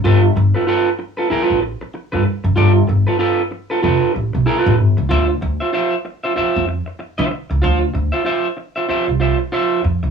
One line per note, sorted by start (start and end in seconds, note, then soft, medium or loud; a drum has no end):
0.04 0.28 G1 loud
0.04 0.25 F4 loud
0.04 0.23 A4 loud
0.04 0.22 B4 loud
0.24 muted clean electric guitar stroke soft
0.36 0.50 G1 medium
0.36 muted clean electric guitar stroke soft
0.55 0.66 F4 medium
0.55 0.67 A4 medium
0.55 0.66 B4 medium
0.67 0.88 F4 medium
0.67 0.89 A4 medium
0.67 0.89 B4 medium
0.99 muted clean electric guitar stroke soft
1.17 1.29 F4 soft
1.17 1.30 A4 medium
1.17 1.29 B4 medium
1.30 1.43 E4 medium
1.30 1.43 G#4 medium
1.30 1.44 A#4 loud
1.30 muted upright bass stroke soft
1.43 1.60 F4 medium
1.43 1.61 A4 medium
1.43 1.61 B4 loud
1.50 1.73 A1 medium
1.62 muted clean electric guitar stroke medium
1.81 muted clean electric guitar stroke medium
1.94 muted clean electric guitar stroke soft
2.12 2.22 G2 medium
2.12 2.24 F4 medium
2.12 2.25 A4 medium
2.12 2.25 B4 medium
2.25 muted clean electric guitar stroke soft
2.44 2.54 F#1 medium
2.44 muted clean electric guitar stroke soft
2.56 2.80 G1 loud
2.56 2.78 F4 medium
2.56 2.75 A4 medium
2.56 2.75 D5 medium
2.75 muted clean electric guitar stroke soft
2.88 3.03 G1 medium
2.88 muted clean electric guitar stroke soft
3.07 3.18 F4 medium
3.07 3.19 A4 medium
3.07 3.19 B4 medium
3.19 3.41 F4 medium
3.19 3.41 A4 medium
3.19 3.42 B4 medium
3.51 muted clean electric guitar stroke soft
3.70 3.81 F4 medium
3.70 3.82 A4 medium
3.70 3.82 B4 medium
3.82 3.98 F1 medium
3.82 4.12 F4 medium
3.82 4.13 A4 medium
3.82 4.13 B4 medium
4.14 4.30 A1 medium
4.14 muted clean electric guitar stroke soft
4.33 4.44 B1 medium
4.33 muted clean electric guitar stroke soft
4.46 4.59 E4 medium
4.46 4.59 G#4 loud
4.46 4.59 A#4 loud
4.59 4.76 F4 medium
4.59 4.76 A4 loud
4.59 4.77 B4 loud
4.66 4.79 A1 loud
4.78 4.93 G1 medium
4.78 muted clean electric guitar stroke soft
4.97 5.07 C#2 medium
4.97 muted clean electric guitar stroke soft
5.09 5.34 D2 loud
5.09 5.30 F4 medium
5.09 5.29 C5 medium
5.09 5.27 E5 loud
5.28 muted clean electric guitar stroke soft
5.41 5.56 D2 medium
5.41 muted clean electric guitar stroke soft
5.60 5.71 F4 soft
5.60 5.72 C5 medium
5.60 5.72 E5 medium
5.73 5.94 F4 medium
5.73 5.94 C5 medium
5.73 5.95 E5 medium
6.05 muted clean electric guitar stroke soft
6.24 6.35 F4 medium
6.24 6.36 C5 medium
6.24 6.35 E5 medium
6.36 6.66 F4 medium
6.36 6.66 C5 medium
6.36 6.67 E5 medium
6.36 muted upright bass stroke soft
6.56 6.79 F2 medium
6.68 muted clean electric guitar stroke soft
6.86 muted clean electric guitar stroke soft
6.99 muted clean electric guitar stroke soft
7.18 7.28 D3 loud
7.18 7.29 F4 medium
7.18 7.30 C5 medium
7.18 7.30 E5 medium
7.30 muted clean electric guitar stroke soft
7.50 7.60 C#2 medium
7.50 muted clean electric guitar stroke soft
7.62 7.87 D2 loud
7.62 7.83 F4 medium
7.62 7.81 C5 medium
7.62 7.81 F5 loud
7.81 muted clean electric guitar stroke soft
7.94 8.09 D2 medium
7.94 muted clean electric guitar stroke soft
8.12 8.24 F4 medium
8.12 8.24 C5 medium
8.12 8.24 E5 medium
8.25 8.46 F4 medium
8.25 8.47 C5 medium
8.25 8.47 E5 medium
8.57 muted clean electric guitar stroke soft
8.76 8.87 F4 soft
8.76 8.88 C5 medium
8.76 8.88 E5 medium
8.89 9.10 F4 medium
8.89 9.08 C5 medium
8.89 9.07 E5 medium
8.89 muted upright bass stroke soft
9.08 9.32 C2 medium
9.08 muted clean electric guitar stroke soft
9.20 9.38 F4 medium
9.20 9.38 C5 medium
9.20 9.39 E5 medium
9.40 muted clean electric guitar stroke soft
9.52 9.82 F4 medium
9.52 9.82 C5 medium
9.52 9.83 E5 medium
9.84 9.98 F2 medium
9.84 muted clean electric guitar stroke soft
10.03 10.11 C#2 medium
10.03 muted clean electric guitar stroke soft